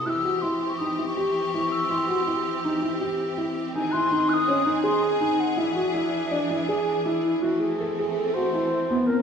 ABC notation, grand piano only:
X:1
M:5/4
L:1/8
Q:1/4=163
K:E
V:1 name="Grand piano"
E F E2 D E =G2 E2 | E F E2 D E =G2 E2 | D E D2 C D G2 D2 | E F E2 =D E G2 E2 |
[K:Alyd] E2 A G2 F E2 B, =C |]